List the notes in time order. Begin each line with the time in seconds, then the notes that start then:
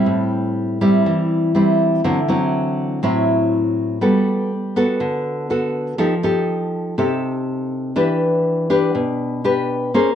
Already playing: G3 C4 E4
0.06 A2
0.81 G3 C4 E4
1.06 E3
1.55 G3 C4 E4
2.04 D3 F#3 C4 E4
2.28 F#3 C4 E4
3.03 A2 F#3 C4 E4
4.01 G3 B3 F#4 A4
4.76 B3 F#4 A4
5.00 D3
5.50 B3 F#4 A4
5.98 F3 D#4 G4 A4
6.23 D#4 G4 A4
6.98 C3 D#4 G4 A4
7.96 E3 D4 G4 B4
8.70 D4 G4 B4
8.95 B2
9.44 D4 G4 B4
9.94 A#3 C#4 G#4 C5